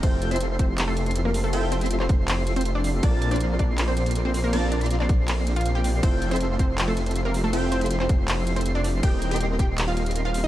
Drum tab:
RD |x---------------x---------------|x---------------x---------------|x---------------x---------------|x---------------x---------------|
HH |x---x-xxx---x---x---x-xxx---o---|x---x-xxx---x---x---x-xxx---o---|x---x-xxx---x---x---x-xxx---o---|x---x-xxx---x---x---x-xxx---o---|
CP |----------------x---------------|----------x-----x---------------|----------------x---------------|----------x-----x---------------|
BD |o-----------o-------------------|------------o-------------------|o-----------o-------------------|------------o-------------------|

RD |x---------------x---------------|x---------------x---------------|x---------------x---------------|
HH |x---x-xxx---x---x---x-xxx---o---|x---x-xxx---x---x---x-xxx---o---|x---x-xxx---x---x---x-xxx---o---|
CP |----------------x---------------|----------x-----x---------------|----------------x---------------|
BD |o-----------o-------------------|------------o-------------------|o-----------o-------------------|